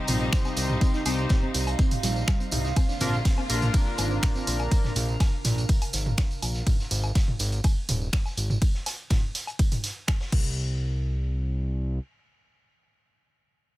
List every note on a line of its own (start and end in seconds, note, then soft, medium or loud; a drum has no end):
0.00 2.72 C3 medium
0.00 6.72 C3 medium
0.00 2.73 G3 medium
0.00 1.03 D#4 loud
0.00 2.72 D#4 loud
0.00 2.76 D#4 medium
0.00 1.03 G4 medium
0.00 1.03 C5 loud
0.00 4.11 C5 medium
0.00 6.67 F5 medium
0.00 3.37 C6 medium
0.07 0.29 A#1 medium
0.07 0.16 C4 loud
0.07 0.16 C5 medium
0.07 mid tom medium
0.07 open hi-hat loud
0.07 tambourine medium
0.07 tambourine loud
0.20 0.24 C4 medium
0.20 0.24 C5 medium
0.20 tambourine soft
0.32 0.38 C5 medium
0.32 0.38 C6 medium
0.32 finger snap loud
0.32 kick loud
0.32 snare loud
0.32 tambourine medium
0.45 0.50 C4 loud
0.45 0.50 C5 medium
0.45 snare medium
0.45 tambourine soft
0.45 low woodblock medium
0.57 0.77 C2 medium
0.57 0.65 C5 loud
0.57 0.65 C6 medium
0.57 open hi-hat loud
0.57 tambourine loud
0.57 tambourine medium
0.70 mid tom medium
0.70 tambourine soft
0.81 0.87 C4 loud
0.81 0.87 C5 medium
0.81 kick loud
0.81 tambourine medium
0.93 1.02 D#4 medium
0.93 1.02 D#5 medium
0.93 snare soft
0.93 tambourine soft
1.05 1.26 C2 loud
1.05 1.14 C4 loud
1.05 1.52 D#4 medium
1.05 1.52 G4 medium
1.05 1.14 C5 medium
1.05 1.52 C5 loud
1.05 open hi-hat loud
1.05 tambourine loud
1.05 tambourine medium
1.05 low woodblock medium
1.18 1.23 C5 medium
1.18 1.23 C6 medium
1.18 tambourine soft
1.29 1.33 C4 medium
1.29 1.33 C5 medium
1.29 kick loud
1.29 snare loud
1.29 mid tom medium
1.29 tambourine medium
1.42 1.48 C4 loud
1.42 1.48 C5 medium
1.54 1.75 C2 medium
1.54 1.60 G4 medium
1.54 1.60 G5 medium
1.54 snare soft
1.54 open hi-hat loud
1.54 tambourine loud
1.54 tambourine medium
1.67 1.75 C5 medium
1.67 1.75 C6 medium
1.67 closed hi-hat soft
1.67 tambourine soft
1.67 low woodblock medium
1.79 1.84 C4 loud
1.79 1.84 C5 medium
1.79 kick loud
1.79 tambourine medium
1.91 closed hi-hat soft
1.91 mid tom medium
1.91 open hi-hat medium
2.02 2.24 A#1 medium
2.02 2.09 G3 loud
2.02 2.09 G4 medium
2.02 snare soft
2.02 open hi-hat loud
2.02 tambourine medium
2.16 2.19 C5 medium
2.16 2.19 C6 medium
2.16 tambourine soft
2.27 2.36 G3 medium
2.27 2.36 G4 medium
2.27 finger snap loud
2.27 kick loud
2.27 snare loud
2.27 tambourine medium
2.27 low woodblock medium
2.40 2.45 C4 medium
2.40 2.45 C5 medium
2.40 closed hi-hat soft
2.40 tambourine soft
2.51 2.73 C2 medium
2.51 2.60 D#4 medium
2.51 2.60 D#5 medium
2.51 mid tom medium
2.51 open hi-hat loud
2.51 tambourine medium
2.53 tambourine medium
2.64 2.68 D#4 loud
2.64 2.68 D#5 medium
2.64 snare medium
2.64 tambourine soft
2.76 4.70 D3 medium
2.76 4.70 A#3 medium
2.76 2.82 C4 loud
2.76 6.67 D4 medium
2.76 4.70 F4 medium
2.76 2.82 C5 medium
2.76 kick loud
2.76 ride medium
2.76 tambourine medium
2.76 low woodblock medium
2.89 2.97 D4 medium
2.89 2.97 D5 medium
2.89 snare soft
2.89 tambourine soft
2.93 6.67 A#4 medium
3.00 3.21 A#1 medium
3.00 3.09 C4 loud
3.00 3.15 D4 loud
3.00 3.15 F4 medium
3.00 3.15 A#4 loud
3.00 3.09 C5 medium
3.00 mid tom loud
3.00 open hi-hat loud
3.00 tambourine medium
3.13 3.18 C5 medium
3.13 3.18 C6 medium
3.13 tambourine soft
3.25 3.28 C4 medium
3.25 3.28 C5 medium
3.25 kick loud
3.25 snare loud
3.25 ride medium
3.25 tambourine loud
3.25 tambourine soft
3.37 3.43 C4 loud
3.37 3.43 C5 medium
3.37 low woodblock medium
3.49 3.70 A#1 medium
3.49 4.93 D4 medium
3.49 4.93 F4 medium
3.49 3.55 G4 medium
3.49 4.93 A#4 loud
3.49 3.55 G5 medium
3.49 open hi-hat loud
3.49 tambourine loud
3.49 tambourine medium
3.62 3.70 C5 medium
3.62 3.70 C6 medium
3.62 closed hi-hat soft
3.62 mid tom medium
3.62 tambourine soft
3.74 3.79 C4 loud
3.74 kick loud
3.74 ride medium
3.74 tambourine medium
3.80 6.67 A#5 medium
3.98 4.19 G#1 medium
3.98 4.06 C4 loud
3.98 4.06 C5 medium
3.98 open hi-hat loud
3.98 tambourine medium
3.98 low woodblock medium
4.11 4.14 C4 medium
4.11 4.14 C5 medium
4.11 tambourine soft
4.23 4.28 C5 medium
4.23 4.28 C6 medium
4.23 finger snap loud
4.23 kick loud
4.23 snare loud
4.23 mid tom loud
4.23 ride medium
4.23 tambourine medium
4.35 4.40 C4 loud
4.35 4.40 C5 medium
4.35 snare soft
4.35 tambourine soft
4.47 4.68 A#1 medium
4.47 4.55 C5 loud
4.47 4.55 C6 medium
4.47 open hi-hat loud
4.47 tambourine medium
4.59 tambourine soft
4.59 low woodblock medium
4.71 kick loud
4.71 ride medium
4.71 tambourine medium
4.84 snare soft
4.84 mid tom loud
4.84 tambourine soft
4.96 5.16 A#1 loud
4.96 open hi-hat loud
4.96 tambourine medium
5.08 tambourine soft
5.20 kick loud
5.20 snare loud
5.20 ride medium
5.20 tambourine medium
5.20 low woodblock medium
5.44 5.65 A#1 medium
5.44 snare medium
5.44 mid tom loud
5.44 open hi-hat loud
5.44 tambourine medium
5.58 closed hi-hat soft
5.58 tambourine soft
5.69 kick loud
5.69 ride medium
5.69 tambourine medium
5.82 closed hi-hat soft
5.82 open hi-hat medium
5.82 low woodblock medium
5.93 6.14 G#1 medium
5.93 snare soft
5.93 open hi-hat loud
5.93 tambourine loud
5.93 tambourine medium
6.06 mid tom loud
6.06 tambourine soft
6.17 finger snap loud
6.17 kick loud
6.17 snare loud
6.17 ride medium
6.17 tambourine soft
6.17 tambourine loud
6.30 closed hi-hat soft
6.30 tambourine soft
6.42 6.63 A#1 medium
6.42 open hi-hat loud
6.42 tambourine medium
6.42 tambourine loud
6.42 low woodblock medium
6.54 snare medium
6.54 tambourine soft
6.67 kick loud
6.67 mid tom loud
6.67 ride medium
6.67 tambourine medium
6.79 snare soft
6.79 tambourine soft
6.91 7.12 G#1 loud
6.91 open hi-hat loud
6.91 tambourine medium
7.03 tambourine soft
7.03 low woodblock medium
7.15 kick loud
7.15 snare loud
7.15 ride medium
7.15 tambourine soft
7.15 tambourine medium
7.28 mid tom loud
7.39 7.60 G#1 medium
7.39 open hi-hat loud
7.39 tambourine medium
7.52 closed hi-hat soft
7.52 tambourine soft
7.64 kick loud
7.64 ride medium
7.64 tambourine medium
7.64 low woodblock medium
7.89 8.09 D#1 medium
7.89 mid tom loud
7.89 open hi-hat loud
7.89 tambourine loud
7.89 tambourine medium
8.02 tambourine soft
8.13 finger snap loud
8.13 kick loud
8.13 snare loud
8.13 ride medium
8.13 tambourine loud
8.13 tambourine medium
8.26 snare soft
8.26 tambourine soft
8.26 low woodblock medium
8.37 8.58 G#1 medium
8.37 open hi-hat loud
8.37 tambourine medium
8.50 mid tom loud
8.50 tambourine soft
8.62 kick loud
8.62 ride medium
8.62 tambourine medium
8.74 snare soft
8.86 snare loud
8.86 open hi-hat loud
8.86 tambourine medium
8.86 low woodblock medium
9.10 kick loud
9.10 snare loud
9.10 mid tom loud
9.10 ride medium
9.10 tambourine medium
9.34 snare medium
9.34 open hi-hat loud
9.34 tambourine medium
9.47 closed hi-hat soft
9.47 low woodblock medium
9.59 kick loud
9.59 ride medium
9.59 tambourine medium
9.72 closed hi-hat soft
9.72 mid tom loud
9.72 open hi-hat medium
9.84 snare medium
9.84 open hi-hat loud
9.84 tambourine medium
10.07 finger snap loud
10.07 kick loud
10.07 snare loud
10.07 ride medium
10.07 tambourine medium
10.07 low woodblock medium
10.20 snare loud
10.20 tambourine medium
10.32 11.99 C2 loud
10.32 kick loud
10.32 crash medium